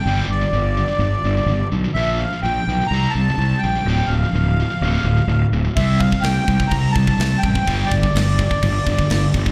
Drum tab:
CC |----------------|----------------|----------------|x-x-x-x-x-x-x-x-|
SD |----------------|----------------|----------------|----o-------o---|
BD |----------------|----------------|----------------|o-oo--ooo-oo--oo|

CC |x-x-x-x-x-x-x-x-|
SD |----o-------o---|
BD |o-oo--ooo-oo--oo|